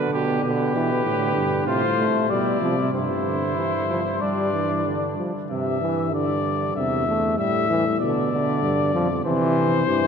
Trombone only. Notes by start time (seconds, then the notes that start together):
Already playing: D3
0.45 D3
0.75 E3
1.06 D3
1.67 C3
1.97 A3
2.29 G3
2.61 F3
2.93 C3
3.26 D3
3.57 E3
3.89 F3
4.22 G3
4.53 E3
4.85 D3
5.17 F3
5.50 C3
5.81 E3
6.13 D3
6.76 C3
7.07 A3
7.39 G3
7.70 E3
8.01 D3
8.32 D3
8.94 F3
9.25 E3
9.87 E3